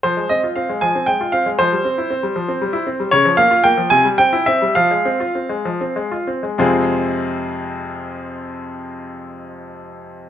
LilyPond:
<<
  \new Staff \with { instrumentName = "Grand piano" } { \time 6/8 \key f \minor \tempo 4. = 68 c''8 ees''8 f''8 aes''8 g''8 f''8 | c''2. | des''8 f''8 g''8 aes''8 g''8 e''8 | f''2~ f''8 r8 |
<f, c aes c' f' aes'>2.~ | <f, c aes c' f' aes'>2. | }
  \new Staff \with { instrumentName = "Grand piano" } { \time 6/8 \key f \minor f16 aes16 c'16 f'16 c'16 aes16 f16 c'16 aes16 f'16 c'16 aes16 | f16 g16 c'16 e'16 c'16 g16 f16 c'16 g16 e'16 c'16 g16 | des16 f16 bes16 f'16 bes16 f16 c16 g16 c'16 e'16 c'16 g16 | f16 aes16 c'16 f'16 c'16 aes16 f16 c'16 aes16 f'16 c'16 aes16 |
r2. | r2. | }
>>